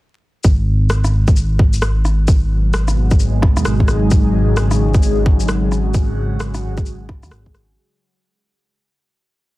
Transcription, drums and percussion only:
0.44 kick loud
0.44 shaker medium
0.90 cross-stick loud
0.90 shaker medium
1.04 cross-stick medium
1.04 shaker medium
1.28 kick medium
1.28 shaker soft
1.36 shaker medium
1.59 kick loud
1.73 shaker medium
1.82 cross-stick loud
1.82 shaker medium
2.05 cross-stick soft
2.05 shaker soft
2.28 kick loud
2.28 shaker medium
2.74 cross-stick loud
2.74 shaker medium
2.88 cross-stick soft
2.88 shaker medium
3.11 kick loud
3.11 shaker soft
3.20 shaker medium
3.42 kick loud
3.42 cross-stick medium
3.57 cross-stick medium
3.57 shaker medium
3.65 cross-stick loud
3.65 shaker medium
3.80 kick medium
3.88 cross-stick medium
3.88 shaker soft
4.11 kick loud
4.11 shaker medium
4.57 cross-stick loud
4.57 shaker medium
4.71 cross-stick soft
4.71 shaker medium
4.94 kick loud
4.94 shaker soft
5.03 shaker medium
5.26 kick loud
5.40 shaker medium
5.49 cross-stick loud
5.49 shaker medium
5.72 cross-stick soft
5.72 shaker soft
5.94 kick loud
5.94 shaker medium
6.40 cross-stick loud
6.40 shaker medium
6.55 cross-stick soft
6.55 shaker medium
6.77 kick loud
6.77 shaker soft
6.86 shaker medium
7.09 kick loud
7.09 cross-stick medium
7.23 cross-stick medium
7.23 shaker medium
7.31 cross-stick loud
7.31 shaker medium
7.46 kick medium
7.55 cross-stick medium
7.55 shaker soft

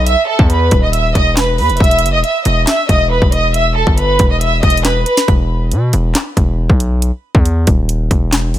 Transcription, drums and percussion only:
0.07 closed hi-hat medium
0.39 kick medium
0.50 closed hi-hat medium
0.71 kick loud
0.71 closed hi-hat medium
0.93 closed hi-hat medium
1.15 kick medium
1.15 closed hi-hat medium
1.37 snare loud
1.37 clap medium
1.37 closed hi-hat medium
1.58 open hi-hat medium
1.70 closed hi-hat medium
1.77 kick loud
1.77 closed hi-hat medium
1.84 closed hi-hat medium
1.91 closed hi-hat medium
1.99 closed hi-hat medium
2.06 closed hi-hat medium
2.24 closed hi-hat medium
2.45 closed hi-hat medium
2.67 snare loud
2.67 clap loud
2.67 closed hi-hat medium
2.89 kick medium
2.89 closed hi-hat medium
3.22 kick medium
3.32 closed hi-hat medium
3.54 closed hi-hat medium
3.87 kick loud
3.98 closed hi-hat medium
4.19 kick medium
4.19 closed hi-hat medium
4.41 closed hi-hat medium
4.63 kick medium
4.63 closed hi-hat soft
4.70 closed hi-hat medium
4.77 closed hi-hat medium
4.85 snare loud
4.85 clap medium
4.85 closed hi-hat medium
5.06 closed hi-hat medium
5.17 snare medium
5.17 closed hi-hat medium
5.28 kick loud
5.28 closed hi-hat soft
5.71 closed hi-hat medium
5.93 closed hi-hat medium
6.15 snare loud
6.15 clap loud
6.15 closed hi-hat medium
6.37 kick medium
6.37 closed hi-hat medium
6.70 kick loud
6.80 closed hi-hat medium
7.02 closed hi-hat medium
7.35 kick loud
7.45 closed hi-hat medium
7.67 kick loud
7.67 closed hi-hat medium
7.89 closed hi-hat medium
8.11 kick medium
8.11 closed hi-hat medium
8.32 snare loud
8.32 clap medium
8.32 closed hi-hat medium
8.54 open hi-hat medium

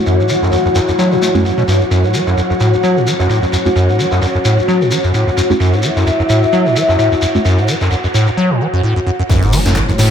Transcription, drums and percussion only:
0.06 ride medium
0.06 shekere medium
0.20 shekere soft
0.29 ride medium
0.29 shekere medium
0.43 snare soft
0.43 shekere soft
0.52 ride medium
0.52 shekere medium
0.66 shekere soft
0.75 snare medium
0.75 ride medium
0.75 shekere medium
0.88 ride soft
0.88 shekere soft
0.99 snare medium
0.99 ride medium
0.99 shekere medium
1.12 shekere soft
1.22 ride medium
1.22 shekere medium
1.35 shekere soft
1.45 ride medium
1.45 shekere soft
1.58 shekere soft
1.68 ride medium
1.68 shekere medium
1.81 shekere soft
1.91 ride medium
1.91 shekere soft
2.04 shekere soft
2.14 ride medium
2.14 shekere medium
2.27 snare soft
2.27 shekere soft
2.37 ride medium
2.37 shekere soft
2.50 shekere soft
2.60 ride medium
2.60 shekere medium
2.73 shekere soft
2.83 ride medium
2.83 shekere soft
2.97 shekere soft
3.07 ride medium
3.07 shekere medium
3.19 snare medium
3.19 shekere soft
3.29 ride medium
3.29 shekere soft
3.43 shekere soft
3.52 ride medium
3.52 shekere medium
3.66 shekere soft
3.76 ride medium
3.76 shekere soft
3.89 shekere soft
3.99 ride medium
3.99 shekere medium
4.11 snare medium
4.11 shekere soft
4.22 ride medium
4.22 shekere soft
4.35 shekere soft
4.45 ride medium
4.45 shekere medium
4.57 ride soft
4.57 shekere soft
4.68 ride medium
4.68 shekere soft
4.82 shekere soft
4.91 ride medium
4.91 shekere medium
5.04 shekere soft
5.14 ride medium
5.14 shekere soft
5.28 shekere soft
5.37 ride medium
5.37 shekere medium
5.51 shekere soft
5.60 ride medium
5.60 shekere soft
5.73 shekere soft
5.83 ride medium
5.83 shekere medium
5.97 snare soft
5.97 shekere soft
6.07 ride medium
6.07 shekere soft
6.20 shekere soft
6.29 ride medium
6.29 shekere medium
6.43 shekere soft
6.53 ride medium
6.53 shekere soft
6.66 shekere soft
6.75 ride medium
6.75 shekere medium
6.89 snare medium
6.89 shekere soft
6.99 ride medium
6.99 shekere soft
7.12 shekere soft
7.22 ride medium
7.22 shekere medium
7.35 shekere soft
7.45 ride medium
7.45 shekere soft
7.58 shekere soft
7.68 ride medium
7.68 shekere medium
7.81 snare soft
7.81 shekere soft
7.91 ride medium
7.91 shekere soft
8.04 shekere soft
8.15 ride medium
8.15 shekere medium
8.27 ride soft
8.27 shekere soft
9.30 kick loud
9.30 closed hi-hat medium
9.30 crash loud
9.30 ride loud
9.30 shekere medium
9.43 closed hi-hat soft
9.43 shekere soft
9.52 open hi-hat loud
9.52 ride medium
9.52 shekere medium
9.66 snare medium
9.66 snare soft
9.66 closed hi-hat soft
9.66 shekere soft
9.76 kick loud
9.76 snare loud
9.76 clap loud
9.76 closed hi-hat medium
9.76 ride medium
9.76 shekere medium
9.88 closed hi-hat soft
9.88 shekere soft
9.98 snare medium
9.98 open hi-hat loud
9.98 ride medium
9.98 shekere medium
10.05 snare medium
10.05 ride medium

